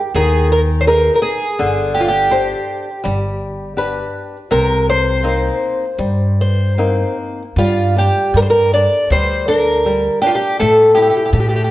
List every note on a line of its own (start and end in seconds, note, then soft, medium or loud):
0.00 0.15 G4 medium
0.14 1.08 D#2 medium
0.14 0.85 D#3 medium
0.14 0.49 G#4 medium
0.52 0.60 A#4 medium
0.81 0.87 C5 medium
0.87 1.45 D#4 soft
0.87 1.45 G#4 soft
0.87 1.14 A#4 medium
0.87 1.45 A#4 soft
1.15 1.22 A#4 medium
1.22 1.90 G#4 loud
1.59 2.53 G1 medium
1.59 2.28 D3 medium
1.94 2.00 G4 medium
2.00 2.07 F4 medium
2.08 4.46 G4 medium
2.31 2.88 D4 soft
2.31 2.88 G4 soft
2.31 2.88 C5 soft
3.04 4.00 G1 medium
3.04 3.74 G3 medium
3.77 4.36 D4 soft
3.77 4.36 G4 soft
3.77 4.36 B4 soft
4.51 5.48 C2 medium
4.51 5.22 C3 medium
4.51 4.85 A#4 medium
4.90 6.35 C5 medium
5.23 5.84 A#3 soft
5.23 5.84 C4 soft
5.23 5.85 D#4 soft
5.98 7.02 G2 medium
5.98 6.75 G3 soft
6.41 7.16 C5 medium
6.78 7.42 A#3 soft
6.78 7.41 C4 soft
6.78 7.42 D#4 soft
7.56 8.07 G2 medium
7.56 8.34 G3 medium
7.56 7.98 F4 medium
7.96 8.34 D4 soft
7.96 8.37 G4 medium
8.34 8.84 G2 medium
8.34 8.73 G3 soft
8.34 8.42 A#4 medium
8.42 8.49 C5 medium
8.50 8.72 A#4 medium
8.74 9.10 D4 soft
8.74 9.11 D5 medium
9.10 10.07 D2 medium
9.10 9.48 G3 soft
9.10 9.48 C5 medium
9.48 9.85 D4 soft
9.48 10.21 A#4 medium
9.86 10.22 G3 soft
10.22 10.58 D4 soft
10.22 10.29 G4 medium
10.26 10.35 F4 medium
10.35 10.59 G4 medium
10.60 11.08 A2 medium
10.60 11.33 A3 medium
10.60 10.94 A4 medium
10.95 11.32 E4 soft
10.95 11.01 G4 medium
11.02 11.09 G4 medium
11.10 11.16 G4 medium
11.17 11.24 G4 soft
11.26 11.31 G4 soft
11.33 11.71 A2 medium
11.33 11.69 A3 medium
11.33 11.39 G4 soft
11.40 11.46 G4 medium
11.49 11.55 G4 soft
11.56 11.62 G4 soft
11.64 11.69 G4 soft